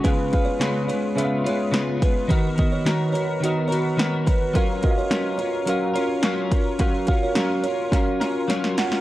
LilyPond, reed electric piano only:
\new Staff \with { instrumentName = "Reed electric piano" } { \time 4/4 \key fis \major \tempo 4 = 107 <cis' gis' b' eis''>8 <cis' gis' b' eis''>4 r8 <cis' gis' b' e'' eis''>4~ <cis' gis' b' e'' eis''>16 r8. | <dis b fis' ais' dis''>8 <dis b fis' ais' dis''>4 r8 <dis b fis' ais' dis''>4~ <dis b fis' ais' dis''>16 r8. | <cis' fis' ais' eis''>8 <cis' fis' ais' dis'' eis''>4 r8 <cis' fis' ais' eis''>4~ <cis' fis' ais' eis''>16 r8. | <cis' fis' ais' eis''>8 <cis' fis' ais' eis''>4 r8 <cis' fis' ais' eis''>4~ <cis' fis' ais' eis''>16 r8. | }